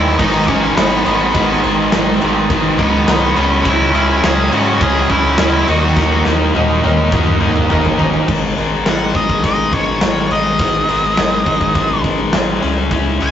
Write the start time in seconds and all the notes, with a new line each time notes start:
Already playing: D#2 G#2 D#3 G#3 B3 D#4 E4 E5
0.18 G#1 G#2 D#3 G#3 B3 D#4 D#5, kick, crash
0.22 D#4
0.46 G#1 G#2 D#3 G#3 C#4 C#5, kick, crash
0.51 B3 D#4
0.76 G#1 G#2 D#3 G#3 B3 D#4 B4, snare, crash
1.04 G#1 G#2 D#3 G#3 B3 B4, crash
1.09 D#4
1.34 G#1 G#2 D#3 G#3 B3 D#4, kick, crash
1.63 G#1 G#2 D#3 G#3 B3 D#4, crash
1.92 G#1 G#2 D#3 G#3 B3 D#4, snare, crash
2.21 G#1 G#2 D#3 G#3 B3 D#4, crash
2.50 G#1 G#2 D#3 G#3 B3 D#4, kick, crash
2.79 C#2 G#2 D#3 G#3 B3 D#4 B4, kick, crash
3.07 C2 G#2 D#3 G#3 B3 D#4, snare, crash
3.35 C#2 C#3 G#3 C#4 E4, crash
3.64 C#2 C#3 G#3 C#4 E4 E5, kick, crash
3.93 C#2 C#3 G#3 C#4 E4 E5, crash
4.22 C#2 C#3 G#3 C#4 E4 G#4 G#5, snare, crash
4.50 G#2 C#3 G#3 C#4 E4 F#4, crash
4.55 F#5
4.80 C#2 C#3 G#3 C#4 E4 G#4 G#5, kick, crash
5.09 C#2 C#3 G#3 C#4 E4 E5, kick, crash
5.38 D2 C#3 G#3 C#4 E4 E5, snare, crash
5.68 D#2 D#3 F#3 A#3 D#4 F#4 F#5, crash
5.96 D#2 D#3 F#3 A#3 D#4, kick, snare
6.25 D#2 D#3 F#3 A#3 D#4, snare
6.54 D#2 D#3 F#3 A#3 D#4, high tom
6.83 D#2 D#3 F#3 A#3 D#4, high tom
7.12 D#2 D#3 F#3 A#3 D#4, kick, mid tom
7.27 mid tom
7.40 G#2 D#3 F#3 A#3 D#4, mid tom
7.56 mid tom
7.69 G1 D#3 F#3 A#3 D#4, mid tom
7.85 floor tom
7.98 D#3 F#3 A#3 D#4, floor tom
8.14 floor tom
8.27 G#1 G#2 D#3 G#3 B3 D#4 G#4, kick, crash
8.57 G#1 G#2 D#3 G#3 B3 D#4 G#4, open hi-hat
8.71 G#3 B3 D#4 G#4
8.85 G#1 G#2 D#3 G#3 B3 D#4 G#4 F#5, snare, open hi-hat
9.14 G#1 G#2 D#3 G#3 B3 D#4 D#5, kick, open hi-hat
9.18 G#4
9.29 G#3 B3 D#4 G#4, kick
9.43 G#1 G#2 D#3 G#3 D#5, kick, open hi-hat
9.59 G#3 B3 D#4 G#4
9.72 G#1 G#2 D#3 G#3 B3 D#4 C#5, kick, open hi-hat
9.76 G#4
9.87 G#3 B3 D#4 G#4
10.01 G#1 G#2 D#3 G#3 B3 D#4 G#4, snare, open hi-hat
10.16 G#3 B3 D#4 G#4
10.30 G#1 G#2 D#3 G#3 D#5, open hi-hat
10.45 G#3 B3 D#4 G#4
10.59 G#1 G#2 D#3 G#3 B3 D#4 G#4, kick, open hi-hat
10.87 G#1 G#2 D#3 G#3 B3 D#4 G#4, open hi-hat
11.03 G#3 B3 D#4 G#4
11.16 G#1 G#2 D#3 G#3 B3 D#4 G#4, snare, open hi-hat
11.46 G#1 G#2 D#3 G#3 B3 D#4 G#4, kick, open hi-hat
11.60 G#3 B3 D#4 G#4, kick
11.75 G#1 G#2 D#3 G#3, kick, open hi-hat
11.90 G#3 B3 D#4 G#4
12.04 G#1 G#2 D#3 G#3 B3 D#4 G#4, kick, open hi-hat
12.18 G#3 B3 D#4 G#4
12.33 G#1 G#2 D#3 G#3 B3 D#4 G#4, snare, open hi-hat
12.47 G#3 B3 D#4 G#4
12.62 C#2 C#3 G#3 C#4 E4 G#4, open hi-hat
12.76 C#4 E4 G#4
12.91 C#2 C#3 G#3 C#4 E4 G#4, kick, open hi-hat
13.20 C#2 C#3 G#3 C#4 E4 G#4 G#5, open hi-hat